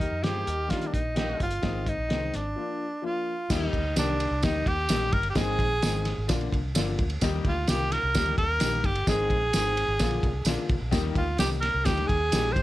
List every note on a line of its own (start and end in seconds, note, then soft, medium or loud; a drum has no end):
0.00 0.25 D#4 medium
0.00 0.19 D#4 medium
0.00 0.19 G4 medium
0.00 0.19 A#4 medium
0.00 kick medium
0.00 closed hi-hat medium
0.11 0.23 F2 medium
0.22 0.43 G2 medium
0.22 0.50 D#3 medium
0.22 0.51 G3 medium
0.22 0.51 A#3 medium
0.22 0.51 D#4 medium
0.22 0.43 F4 medium
0.22 0.72 G4 loud
0.22 0.43 G#4 medium
0.22 0.43 C5 medium
0.22 snare loud
0.22 closed hi-hat medium
0.47 0.67 D#2 medium
0.47 0.91 D#4 medium
0.47 0.91 G4 medium
0.47 0.91 A#4 medium
0.47 closed hi-hat medium
0.68 0.96 D#3 medium
0.68 0.90 D#3 medium
0.68 0.97 G3 medium
0.68 0.97 A#3 medium
0.68 0.97 D4 medium
0.68 0.88 F4 medium
0.68 kick medium
0.68 snare medium
0.68 closed hi-hat medium
0.81 closed hi-hat soft
0.87 0.95 D4 medium
0.94 1.33 A#1 medium
0.94 1.40 D#4 loud
0.94 kick medium
0.94 closed hi-hat medium
1.15 1.43 D#3 medium
1.15 1.44 G3 medium
1.15 1.44 A#3 medium
1.15 1.50 A#3 loud
1.15 1.44 D#4 medium
1.15 1.50 D#4 medium
1.15 1.50 G4 loud
1.15 snare loud
1.15 closed hi-hat medium
1.40 1.60 G1 medium
1.40 1.90 F4 loud
1.40 kick medium
1.40 closed hi-hat medium
1.51 closed hi-hat medium
1.62 1.93 G#1 medium
1.62 1.90 D#3 medium
1.62 1.90 G#3 medium
1.62 1.91 C4 medium
1.62 1.91 D#4 medium
1.62 kick loud
1.62 snare loud
1.62 closed hi-hat medium
1.86 2.37 D#4 medium
1.86 kick medium
1.86 closed hi-hat medium
1.98 2.08 A#1 medium
2.09 2.30 C2 medium
2.09 2.37 D#3 medium
2.09 2.37 G#3 medium
2.09 2.37 C4 medium
2.09 2.38 D#4 medium
2.09 snare loud
2.09 closed hi-hat medium
2.34 2.54 G#1 medium
2.34 3.05 D4 medium
2.34 snare soft
2.34 closed hi-hat medium
2.56 2.84 F3 medium
2.56 2.84 A#3 medium
2.56 2.84 D4 medium
2.56 2.85 F4 medium
3.02 3.30 F3 medium
3.02 3.30 A#3 medium
3.02 3.31 D4 medium
3.02 3.31 F4 medium
3.02 3.54 F4 medium
3.50 3.70 D#2 loud
3.50 3.77 D#3 medium
3.50 3.77 G3 medium
3.50 3.78 A#3 medium
3.50 3.78 D#4 medium
3.50 3.97 D#4 medium
3.50 3.78 G4 loud
3.50 kick loud
3.50 snare loud
3.50 crash loud
3.50 tambourine medium
3.73 3.93 D2 loud
3.73 kick loud
3.73 ride medium
3.95 4.26 C2 medium
3.95 4.23 D#3 medium
3.95 4.23 G3 medium
3.95 4.24 A#3 medium
3.95 4.46 D4 medium
3.95 4.24 D#4 medium
3.95 4.24 G4 medium
3.95 snare loud
3.95 ride medium
3.95 tambourine medium
4.20 ride medium
4.31 4.41 C2 loud
4.42 4.63 D2 loud
4.42 4.70 D#3 medium
4.42 4.70 G3 medium
4.42 4.71 A#3 medium
4.42 4.69 D#4 medium
4.42 4.71 D#4 medium
4.42 4.71 G4 medium
4.42 kick medium
4.42 snare loud
4.42 ride medium
4.42 tambourine medium
4.66 4.86 D#2 loud
4.66 5.14 G4 loud
4.66 kick medium
4.66 ride medium
4.89 5.09 A#1 loud
4.89 5.16 D#3 medium
4.89 5.17 G3 medium
4.89 5.17 A#3 medium
4.89 5.17 D#4 medium
4.89 5.17 G4 medium
4.89 snare loud
4.89 ride medium
4.89 tambourine loud
5.13 5.33 G1 medium
5.13 5.29 A#4 loud
5.13 kick loud
5.13 ride medium
5.23 ride soft
5.30 5.37 G4 medium
5.35 5.56 G#1 loud
5.35 5.63 D#3 loud
5.35 5.63 G#3 medium
5.35 5.63 C4 medium
5.35 5.63 D#4 loud
5.35 6.29 G#4 loud
5.35 5.64 G#4 loud
5.35 kick loud
5.35 snare loud
5.35 ride medium
5.35 tambourine medium
5.59 5.79 A#1 medium
5.59 kick loud
5.59 ride medium
5.82 6.12 G#1 loud
5.82 6.10 D#3 medium
5.82 6.10 G#3 medium
5.82 6.10 C4 medium
5.82 6.10 D#4 medium
5.82 6.10 G#4 medium
5.82 snare loud
5.82 ride medium
5.82 tambourine loud
6.05 snare soft
6.05 ride medium
6.18 6.28 G#1 loud
6.28 6.49 A#1 loud
6.28 6.55 D3 medium
6.28 6.56 F3 medium
6.28 6.56 A#3 medium
6.28 6.56 D4 medium
6.28 6.56 F4 loud
6.28 kick loud
6.28 snare loud
6.28 ride medium
6.28 tambourine medium
6.41 ride soft
6.53 6.72 C2 loud
6.53 kick medium
6.53 ride medium
6.75 6.95 G1 loud
6.75 7.02 D3 medium
6.75 7.02 F3 medium
6.75 7.03 A#3 medium
6.75 7.02 D4 medium
6.75 7.03 F4 loud
6.75 snare loud
6.75 ride medium
6.75 tambourine loud
6.99 7.19 D2 medium
6.99 kick loud
6.99 ride medium
7.10 ride soft
7.21 7.41 D#2 loud
7.21 7.49 D#3 loud
7.21 7.49 G3 loud
7.21 7.49 A#3 loud
7.21 7.49 D#4 loud
7.21 7.50 G4 loud
7.21 kick loud
7.21 snare loud
7.21 ride medium
7.21 tambourine medium
7.45 7.64 D2 loud
7.45 7.71 F4 medium
7.45 kick medium
7.45 ride medium
7.67 7.98 C2 loud
7.67 7.95 D#3 medium
7.67 7.95 G3 medium
7.67 7.96 A#3 medium
7.67 7.96 D#4 medium
7.67 7.96 F4 medium
7.67 7.93 G4 loud
7.67 snare loud
7.67 ride medium
7.67 tambourine medium
7.92 8.37 A#4 loud
7.92 snare soft
7.92 ride medium
8.03 8.13 C2 medium
8.14 8.35 D2 medium
8.14 8.41 D#3 medium
8.14 8.42 G3 medium
8.14 8.42 A#3 medium
8.14 8.42 D#4 medium
8.14 8.42 G4 medium
8.14 kick medium
8.14 snare loud
8.14 ride medium
8.14 tambourine medium
8.26 ride soft
8.38 8.57 D#2 loud
8.38 8.87 A#4 loud
8.38 kick medium
8.38 ride medium
8.60 8.81 A#1 loud
8.60 8.87 D#3 medium
8.60 8.88 G3 medium
8.60 8.88 A#3 medium
8.60 8.88 D#4 medium
8.60 8.89 G4 medium
8.60 snare loud
8.60 ride medium
8.60 tambourine loud
8.84 9.04 G1 medium
8.84 9.10 G4 loud
8.84 kick loud
8.84 ride medium
8.95 ride soft
9.07 9.27 G#1 loud
9.07 9.34 D#3 loud
9.07 9.35 G#3 loud
9.07 9.35 C4 medium
9.07 9.35 D#4 medium
9.07 10.70 G#4 loud
9.07 9.35 G#4 loud
9.07 kick loud
9.07 snare loud
9.07 ride medium
9.07 tambourine medium
9.30 9.50 A#1 loud
9.30 kick loud
9.30 ride medium
9.53 9.84 G#1 loud
9.53 9.80 D#3 medium
9.53 9.81 G#3 medium
9.53 9.81 C4 medium
9.53 9.81 D#4 medium
9.53 9.81 G#4 medium
9.53 snare loud
9.53 ride medium
9.53 tambourine medium
9.77 ride medium
9.88 9.98 G#1 medium
9.99 10.20 A#1 loud
9.99 10.27 D3 medium
9.99 10.27 F3 medium
9.99 10.27 A#3 medium
9.99 10.28 D4 medium
9.99 10.28 F4 loud
9.99 kick medium
9.99 snare loud
9.99 ride medium
9.99 tambourine medium
10.11 ride soft
10.23 10.43 C2 medium
10.23 kick medium
10.23 ride medium
10.45 10.56 A#1 medium
10.45 10.74 D3 medium
10.45 10.74 F3 medium
10.45 10.74 A#3 medium
10.45 10.74 D4 medium
10.45 10.74 F4 loud
10.45 snare loud
10.45 ride medium
10.45 tambourine loud
10.69 10.79 C2 medium
10.69 kick loud
10.69 ride medium
10.81 10.91 A#1 medium
10.91 11.12 D#2 loud
10.91 11.19 D#3 loud
10.91 11.19 G3 loud
10.91 11.20 A#3 loud
10.91 11.20 D#4 loud
10.91 11.20 G4 loud
10.91 kick loud
10.91 snare loud
10.91 ride medium
10.91 tambourine medium
11.15 11.35 D2 medium
11.15 11.38 F4 medium
11.15 kick loud
11.15 ride medium
11.38 11.69 C2 loud
11.38 11.66 D#3 medium
11.38 11.66 G3 medium
11.38 11.67 A#3 medium
11.38 11.67 D#4 medium
11.38 11.50 G4 medium
11.38 11.67 G4 medium
11.38 snare loud
11.38 ride medium
11.38 tambourine medium
11.60 11.86 A#4 loud
11.60 snare soft
11.60 ride medium
11.74 11.84 C2 loud
11.85 12.06 D2 medium
11.85 12.12 D#3 medium
11.85 12.13 G3 medium
11.85 12.13 A#3 medium
11.85 12.13 D#4 medium
11.85 12.08 G4 medium
11.85 12.13 G4 medium
11.85 kick medium
11.85 snare loud
11.85 ride medium
11.85 tambourine medium
11.97 ride soft
12.07 12.29 D#2 loud
12.07 12.54 G#4 loud
12.07 kick medium
12.07 ride medium
12.32 12.62 A#1 loud
12.32 12.59 D#3 medium
12.32 12.60 G3 medium
12.32 12.60 A#3 medium
12.32 12.60 D#4 medium
12.32 12.60 G4 medium
12.32 snare loud
12.32 ride medium
12.32 tambourine loud
12.52 12.62 C5 loud
12.52 kick loud
12.52 ride medium